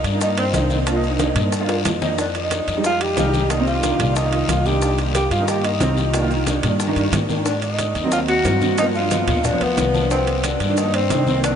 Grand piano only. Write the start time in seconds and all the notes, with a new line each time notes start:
0.12 A#3 D4 D#4
0.53 A#3 D4 D#4
0.70 A#3 D4 D#4
0.86 A#3 D4 F4
0.94 A#3 D4 D#4
1.19 A#3 D4 D#4
1.59 A#3 D4 F4
2.01 A#3 D4 D#4
2.76 G3 G#3 D#4
3.17 G3 G#3 D#4
3.33 G3 G#3 D#4
3.50 D#3 A#3 D4
3.58 D#3 A#3 C4
3.83 D#3 A#3 D4
4.23 D#3 A#3 F4
4.65 D#3 A#3 D4
5.39 D#3 A#3 D#4
5.80 D#3 A#3 C4
5.97 D#3 A#3 F4
6.13 D#3 A#3 D4
6.21 D#3 A#3 F4
6.46 D#3 A#3 D4
6.87 D#3 A#3 D4
7.28 D#3 A#3 D4
8.03 F#3 A#3 C4
8.44 F#3 A#3 C4
8.61 F#3 A#3 C4
8.77 F3 A#3 B3
8.85 F3 A#3 D4
9.10 F3 A#3 B3
9.52 F3 A#3 B3
9.93 F3 A#3 D4
10.68 D#3 A#3 D4
11.10 D#3 A#3 D4
11.26 D#3 A#3 C4
11.42 D#3 A#3 D4
11.51 D#3 A#3